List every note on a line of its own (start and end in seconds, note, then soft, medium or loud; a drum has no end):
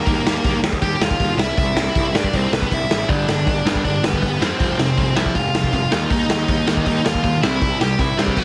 0.06 0.19 D#2 medium
0.06 0.59 A#3 medium
0.06 0.59 A#4 medium
0.06 kick loud
0.06 open hi-hat medium
0.24 0.37 D#2 medium
0.24 snare loud
0.44 0.57 D#2 medium
0.44 kick loud
0.44 open hi-hat soft
0.63 0.76 D#2 medium
0.63 snare loud
0.73 kick medium
0.82 0.94 D#2 medium
0.82 1.00 G4 medium
0.82 1.03 G5 medium
0.82 kick medium
0.82 open hi-hat medium
1.00 1.13 D#2 medium
1.00 1.37 F4 medium
1.00 1.39 F5 medium
1.00 snare loud
1.10 kick medium
1.20 1.33 D#2 medium
1.20 kick loud
1.20 open hi-hat medium
1.37 1.50 C2 medium
1.37 1.57 E4 medium
1.37 1.57 E5 loud
1.37 snare loud
1.57 1.70 C2 medium
1.57 2.11 E4 medium
1.57 2.16 E5 loud
1.57 kick loud
1.57 open hi-hat medium
1.74 1.87 C2 medium
1.74 snare loud
1.95 2.08 C2 medium
1.95 kick loud
1.95 open hi-hat medium
2.13 2.26 G2 medium
2.13 2.33 D4 medium
2.13 2.35 D5 medium
2.13 snare loud
2.24 kick medium
2.33 2.46 C2 medium
2.33 2.52 C4 medium
2.33 2.53 C5 medium
2.33 kick medium
2.33 open hi-hat medium
2.52 2.65 C2 medium
2.52 2.71 B3 medium
2.52 2.73 B4 medium
2.52 snare loud
2.62 kick medium
2.71 2.84 C2 medium
2.71 3.08 E4 medium
2.71 3.11 E5 medium
2.71 kick loud
2.71 open hi-hat medium
2.90 3.03 A1 medium
2.90 snare loud
3.09 3.22 G1 medium
3.09 3.26 G2 medium
3.09 3.27 D3 medium
3.09 3.27 G3 medium
3.09 3.81 D4 medium
3.09 3.81 D5 medium
3.09 kick loud
3.09 open hi-hat medium
3.28 3.41 G1 medium
3.28 3.45 G2 medium
3.28 3.45 D3 medium
3.28 snare loud
3.47 3.59 G1 medium
3.47 3.64 G2 medium
3.47 3.64 D3 medium
3.47 kick loud
3.47 open hi-hat soft
3.66 3.78 G1 medium
3.66 3.83 G2 medium
3.66 3.83 D3 medium
3.66 3.84 G3 loud
3.66 snare loud
3.75 kick medium
3.85 3.97 G1 medium
3.85 4.02 G2 medium
3.85 4.02 D3 medium
3.85 4.02 D4 medium
3.85 4.05 D5 medium
3.85 kick medium
3.85 open hi-hat medium
4.03 4.15 G1 medium
4.03 4.21 G2 medium
4.03 4.21 D3 medium
4.03 4.39 B3 medium
4.03 4.42 B4 medium
4.03 snare loud
4.13 kick medium
4.22 4.35 G1 medium
4.22 4.39 G2 medium
4.22 4.39 D3 medium
4.22 kick medium
4.22 open hi-hat soft
4.39 4.52 F2 medium
4.39 4.59 G2 medium
4.39 4.59 D3 medium
4.39 4.59 G3 medium
4.39 5.14 C4 medium
4.39 5.19 C5 medium
4.39 snare loud
4.60 4.72 F1 medium
4.60 4.78 F2 medium
4.60 4.78 C3 loud
4.60 4.78 F3 medium
4.60 kick loud
4.60 open hi-hat medium
4.78 4.91 F1 medium
4.78 4.96 F2 medium
4.78 4.96 C3 medium
4.78 snare loud
4.98 5.10 F1 medium
4.98 5.15 F2 medium
4.98 5.15 C3 medium
4.98 kick loud
4.98 open hi-hat medium
5.16 5.29 C2 medium
5.16 5.34 F2 medium
5.16 5.35 C3 medium
5.16 5.35 F3 loud
5.16 5.34 E4 medium
5.16 5.35 E5 medium
5.16 snare loud
5.26 kick medium
5.35 5.48 F1 medium
5.35 5.53 F2 medium
5.35 5.53 C3 medium
5.35 5.70 F4 medium
5.35 5.73 F5 medium
5.35 kick medium
5.35 open hi-hat medium
5.54 5.67 F1 medium
5.54 5.71 F2 medium
5.54 5.72 C3 medium
5.54 snare loud
5.63 kick medium
5.73 5.85 F1 medium
5.73 5.90 F2 medium
5.73 5.90 C3 medium
5.73 6.09 F4 medium
5.73 6.08 F5 medium
5.73 kick loud
5.73 open hi-hat medium
5.91 6.05 D#2 medium
5.91 6.09 D#3 medium
5.91 6.09 A#3 medium
5.91 6.10 D#4 medium
5.91 snare loud
6.10 6.23 D#2 medium
6.10 6.28 D#3 medium
6.10 6.28 A#3 medium
6.10 6.82 D#4 medium
6.10 6.86 D#5 medium
6.10 kick loud
6.10 open hi-hat medium
6.30 6.43 D#2 medium
6.30 6.47 D#3 medium
6.30 6.47 A#3 medium
6.30 snare loud
6.48 6.61 D#2 medium
6.48 6.65 D#3 medium
6.48 6.66 A#3 medium
6.48 kick loud
6.48 open hi-hat medium
6.67 6.80 D#2 medium
6.67 6.85 D#3 medium
6.67 6.85 A#3 medium
6.67 6.85 D#4 loud
6.67 snare loud
6.77 kick medium
6.86 6.99 D#2 medium
6.86 7.03 D#3 medium
6.86 7.03 A#3 medium
6.86 7.04 D#4 medium
6.86 7.06 D#5 medium
6.86 kick medium
6.86 open hi-hat medium
7.04 7.18 D#2 medium
7.04 7.21 D#3 medium
7.04 7.22 A#3 medium
7.04 7.40 F4 medium
7.04 7.40 F5 medium
7.04 snare loud
7.14 kick medium
7.22 7.36 D#2 medium
7.22 7.40 D#3 medium
7.22 7.40 A#3 medium
7.22 kick medium
7.22 open hi-hat medium
7.42 7.56 C2 medium
7.42 7.59 C3 medium
7.42 7.59 G3 medium
7.42 7.60 C4 medium
7.42 7.77 E4 medium
7.42 7.77 E5 medium
7.42 snare loud
7.61 7.74 C2 medium
7.61 7.78 C3 medium
7.61 7.78 G3 medium
7.61 kick loud
7.61 open hi-hat medium
7.80 7.93 C2 medium
7.80 7.97 C3 medium
7.80 7.97 G3 medium
7.80 7.97 G4 medium
7.80 8.00 G5 medium
7.80 snare loud
7.99 8.11 C2 medium
7.99 8.16 C3 medium
7.99 8.16 G3 medium
7.99 8.17 E4 medium
7.99 8.21 E5 medium
7.99 kick loud
7.99 open hi-hat medium
8.18 8.31 G2 medium
8.18 8.35 C3 loud
8.18 8.35 G3 medium
8.18 8.35 C4 loud
8.18 8.37 G4 medium
8.18 8.40 G5 medium
8.18 snare loud
8.27 kick medium
8.37 8.44 F#4 medium
8.37 8.44 F#5 medium
8.37 kick loud
8.37 crash medium